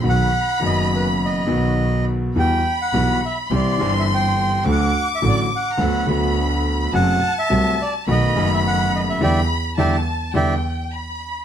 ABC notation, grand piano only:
X:1
M:4/4
L:1/8
Q:1/4=105
K:Em
V:1 name="Grand piano" clef=bass
[B,,,B,,^D,F,B,F] z [F,,,F,,D,F,B,F]3 [B,,,B,,D,F,B,F]3 | [E,,E,G,B,F] z [B,,,B,,E,G,B,F] z [C,,C,E,G,CG] [G,,,G,,E,G,CG]3 | [D,,D,F,A,F] z [A,,,A,,D,F,A,F] z [D,,D,F,B,F] [D,,D,F,B,F]3 | [F,,C,F,A,F] z [C,,C,F,A,F] z [B,,,B,,^D,A,B,F] [F,,,F,,D,A,B,F]3 |
[D,E,G,] z [D,E,G,] z [D,E,G,] z3 |]